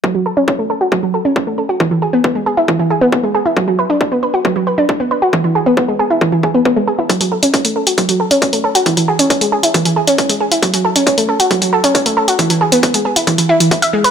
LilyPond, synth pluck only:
\new Staff \with { instrumentName = "Synth pluck" } { \time 4/4 \key fis \minor \tempo 4 = 136 fis16 fis16 a'16 cis'16 cis'16 a16 a'16 fis'16 fis16 fis16 a'16 cis'16 cis'16 a16 a'16 fis'16 | e16 e16 gis'16 b16 b16 gis16 gis'16 e'16 e16 e16 gis'16 b16 b16 gis16 gis'16 e'16 | fis16 fis16 b'16 d'16 d'16 b16 b'16 fis'16 fis16 fis16 b'16 d'16 d'16 b16 b'16 fis'16 | e16 e16 gis'16 b16 b16 gis16 gis'16 e'16 e16 e16 gis'16 b16 b16 gis16 gis'16 e'16 |
fis16 fis16 a'16 cis'16 cis'16 a16 a'16 fis'16 fis16 fis16 a'16 cis'16 cis'16 a16 a'16 fis'16 | e16 e16 gis'16 cis'16 cis'16 gis16 gis'16 e'16 e16 e16 gis'16 cis'16 cis'16 gis16 gis'16 e'16 | fis16 fis16 a'16 cis'16 cis'16 a16 a'16 fis'16 fis16 fis16 a'16 cis'16 cis'16 a16 a'16 fis'16 | e16 e16 gis'16 b16 b16 gis16 gis'16 e'16 e16 e16 e'16 e16 e'16 e''16 gis16 b'16 | }